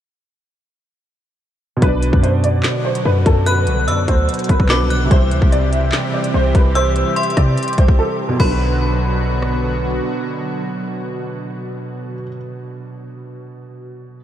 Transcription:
1.77 felt piano B2 F#3
1.82 808-style bass B1, analog synth pad B2 D3 F#3 F#4, felt piano D4, upright piano B4, kick, closed hi-hat
1.88 felt piano D5
2.03 closed hi-hat
2.13 808-style bass F#2, kick
2.23 upright piano C5, closed hi-hat
2.44 upright piano D5, closed hi-hat
2.63 snare, clap, closed hi-hat
2.85 upright piano C5
2.95 closed hi-hat
3.05 808-style bass F#2, upright piano B4
3.26 808-style bass F#2, upright piano A4, kick, closed hi-hat
3.46 upright piano B4, synth bell F#6, closed hi-hat
3.67 808-style bass C2, closed hi-hat
3.88 808-style bass F#2, upright piano D5, synth bell E6, closed hi-hat
4.08 808-style bass D2, upright piano C5, kick, closed hi-hat
4.29 closed hi-hat
4.34 closed hi-hat
4.39 closed hi-hat
4.44 closed hi-hat
4.49 808-style bass B1, upright piano B4, kick, closed hi-hat
4.60 808-style bass B1, kick
4.67 felt piano B2 F#3 D4, upright piano B4, synth bell D6, snare, clap
4.73 felt piano B4
4.80 808-style bass C2
4.90 synth bell F#6, closed hi-hat
4.96 808-style bass B1
5.05 felt piano C3 G3
5.11 808-style bass C2, analog synth pad E3 G3 C4 G4, felt piano E4, upright piano C5, kick, closed hi-hat
5.16 felt piano C5
5.31 808-style bass D2, closed hi-hat
5.42 808-style bass C2, kick
5.52 upright piano D5, closed hi-hat
5.73 upright piano E5, closed hi-hat
5.92 snare, clap, closed hi-hat
6.14 upright piano D5
6.24 closed hi-hat
6.34 808-style bass C2, upright piano C5
6.55 808-style bass C2, upright piano B4, kick, closed hi-hat
6.75 upright piano C5, synth bell E6, closed hi-hat
6.96 closed hi-hat
7.16 upright piano E5, synth bell C6, closed hi-hat
7.23 closed hi-hat
7.30 closed hi-hat
7.37 808-style bass C3, upright piano D5, kick, cross-stick, closed hi-hat
7.58 closed hi-hat
7.63 closed hi-hat
7.68 closed hi-hat
7.73 closed hi-hat
7.78 808-style bass C2, upright piano C5, kick, closed hi-hat
7.88 808-style bass C2, kick
7.99 upright piano A4
8.29 felt piano B2
8.36 808-style bass B1, analog synth pad D3 F#3 B3 F#4, felt piano F#3, upright piano B4, synth bell B5, kick, crash
8.43 felt piano D4
8.51 felt piano B4
9.42 cross-stick

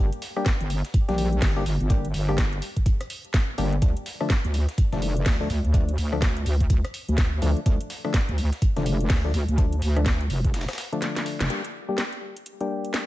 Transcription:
Already playing: wobble bass G1, synth stab G3 A#3 D4 G4
0.13 closed hi-hat
0.22 snare, closed hi-hat, open hi-hat
0.36 synth stab G3 A#3 D4 G4, cross-stick
0.46 kick, snare, closed hi-hat
0.61 wobble bass G1, closed hi-hat
0.70 closed hi-hat, open hi-hat
0.85 snare, closed hi-hat
0.94 kick, closed hi-hat
1.08 wobble bass A#1, synth stab G3 A#3 D4 G4, snare, closed hi-hat
1.18 closed hi-hat, open hi-hat
1.33 closed hi-hat
1.42 wobble bass G1, kick, snare, closed hi-hat, open hi-hat
1.56 synth stab G3 A#3 D4 G4
1.66 wobble bass G1, snare, closed hi-hat, open hi-hat
1.81 wobble bass G1, closed hi-hat
1.90 synth stab G3 A#3 D4 G4, kick, closed hi-hat
2.05 closed hi-hat
2.14 wobble bass G1, snare, closed hi-hat, open hi-hat
2.29 synth stab G3 A#3 D4 G4, cross-stick
2.38 kick, snare, closed hi-hat
2.53 closed hi-hat
2.62 closed hi-hat, open hi-hat
2.77 kick, closed hi-hat
2.86 kick, closed hi-hat
3.01 cross-stick, closed hi-hat
3.10 closed hi-hat, open hi-hat
3.25 closed hi-hat
3.34 kick, snare, closed hi-hat
3.58 wobble bass G1, synth stab G3 A#3 D4 G4, closed hi-hat, open hi-hat
3.73 closed hi-hat
3.82 synth stab D3 F3 A3 D4, kick, closed hi-hat
3.97 closed hi-hat
4.06 snare, closed hi-hat, open hi-hat
4.20 synth stab D3 F3 A3 D4, cross-stick
4.30 kick, snare, closed hi-hat
4.44 wobble bass D2, closed hi-hat
4.54 closed hi-hat, open hi-hat
4.69 snare, closed hi-hat
4.78 kick, closed hi-hat
4.92 wobble bass F1, synth stab D3 F3 A3 D4, snare, closed hi-hat
5.02 closed hi-hat, open hi-hat
5.17 closed hi-hat
5.26 wobble bass D2, kick, snare, closed hi-hat, open hi-hat
5.40 synth stab D3 F3 A3 D4
5.50 wobble bass D2, snare, closed hi-hat, open hi-hat
5.64 wobble bass D2, closed hi-hat
5.74 synth stab D3 F3 A3 D4, kick, closed hi-hat
5.89 closed hi-hat
5.98 wobble bass D2, snare, closed hi-hat, open hi-hat
6.12 synth stab D3 F3 A3 D4, cross-stick
6.22 kick, snare, closed hi-hat
6.37 closed hi-hat
6.46 wobble bass D2, closed hi-hat, open hi-hat
6.60 kick, closed hi-hat
6.70 kick, closed hi-hat
6.84 cross-stick, closed hi-hat
6.94 closed hi-hat, open hi-hat
7.08 wobble bass D2, closed hi-hat
7.18 kick, snare, closed hi-hat
7.42 wobble bass D2, synth stab D3 F3 A3 D4, closed hi-hat, open hi-hat
7.57 closed hi-hat
7.66 wobble bass D2, synth stab D3 F3 A3 D4, kick, closed hi-hat
7.81 closed hi-hat
7.90 snare, closed hi-hat, open hi-hat
8.04 synth stab D3 F3 A3 D4, cross-stick
8.14 kick, snare, closed hi-hat
8.29 wobble bass D2, closed hi-hat
8.38 closed hi-hat, open hi-hat
8.52 snare, closed hi-hat
8.62 kick, closed hi-hat
8.76 wobble bass F1, synth stab D3 F3 A3 D4, snare, closed hi-hat
8.86 closed hi-hat, open hi-hat
9.01 closed hi-hat
9.10 wobble bass D2, kick, snare, closed hi-hat, open hi-hat
9.24 synth stab D3 F3 A3 D4
9.34 wobble bass D2, snare, closed hi-hat, open hi-hat
9.48 wobble bass D2, closed hi-hat
9.58 synth stab D3 F3 A3 D4, kick, closed hi-hat
9.72 closed hi-hat
9.82 wobble bass D2, snare, closed hi-hat, open hi-hat
9.96 synth stab D3 F3 A3 D4, cross-stick, closed hi-hat
10.06 kick, snare, closed hi-hat
10.21 closed hi-hat
10.30 wobble bass F1, closed hi-hat, open hi-hat
10.45 kick, closed hi-hat
10.54 snare, closed hi-hat
10.61 snare, closed hi-hat
10.68 cross-stick, snare, closed hi-hat
10.73 snare, closed hi-hat
10.78 snare, closed hi-hat, open hi-hat
10.92 synth stab D3 F3 A3 D4, closed hi-hat
11.02 snare, closed hi-hat
11.16 snare, closed hi-hat
11.26 closed hi-hat, open hi-hat
11.41 wobble bass F1, snare, closed hi-hat
11.50 synth stab G3 A#3 D4 G4, closed hi-hat
11.64 closed hi-hat
11.89 synth stab G3 A#3 D4 G4
11.98 snare, closed hi-hat
12.13 closed hi-hat
12.37 closed hi-hat
12.46 closed hi-hat
12.61 synth stab G3 A#3 D4 G4, closed hi-hat
12.85 closed hi-hat
12.94 snare, closed hi-hat

